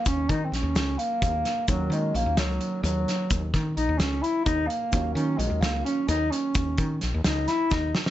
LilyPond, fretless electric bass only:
\new Staff \with { instrumentName = "Fretless electric bass" } { \clef bass \time 7/8 \key ees \minor \tempo 4 = 130 ees,8 ees8 bes,,16 ees,16 des,8 r8 ees,8 r8 | ees,8 ees8 bes,,16 ees,16 des,8 r8 ees,8 r8 | ees,8 ees8 bes,,16 ees,16 des,8 r8 ees,8 r8 | ees,8 ees8 bes,,16 ees,16 des,8 r8 ees,8 r8 |
ees,8 ees8 bes,,16 ees,16 des,8 r8 ees,8 r8 | }